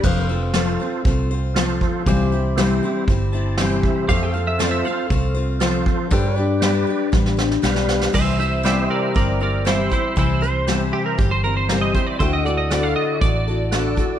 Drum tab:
CC |x---------------|----------------|----------------|----------------|
HH |o---o---o-------|o---o---o---o---|o-------o-------|o---------------|
SD |----o-------o---|----o-------o---|----o-------o---|----o---oooooooo|
BD |o-------o-----o-|o-------o-----o-|o-------o-----o-|o-------o-------|

CC |x---------------|----------------|----------------|
HH |--x-x---x---x-x-|x-x-x---x---x-x-|x-x-x---x---x-x-|
SD |----o-------o---|----o-------o---|----o-------o---|
BD |o-------o-----o-|o-------o-----o-|o-------o-----o-|